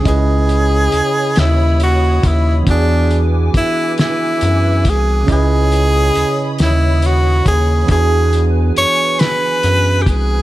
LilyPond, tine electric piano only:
\new Staff \with { instrumentName = "Tine electric piano" } { \time 6/8 \key cis \minor \tempo 4. = 46 <cis cis' e' b' dis''>2. | <e b d' fis' gis'>2. | <cis cis' e' b' dis''>2. | <e b d' fis' gis'>2. | }